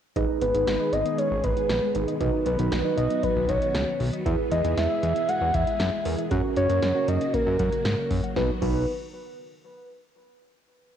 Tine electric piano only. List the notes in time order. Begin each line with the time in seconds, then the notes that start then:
0.16 D#4 G#4 B4
0.54 D#4 G#4 B4
1.95 D#4 G#4 B4
2.21 D#4 F#4 B4
2.59 D#4 F#4 B4
2.85 D#4 F#4 B4
4.26 E4 G#4 B4
4.64 E4 G#4 B4
6.05 E4 G#4 A#4
6.31 C#4 F#4 A#4
6.69 C#4 F#4 A#4
6.95 C#4 F#4 A#4
8.36 D#4 F#4 B4
8.62 D#4 F#4 B4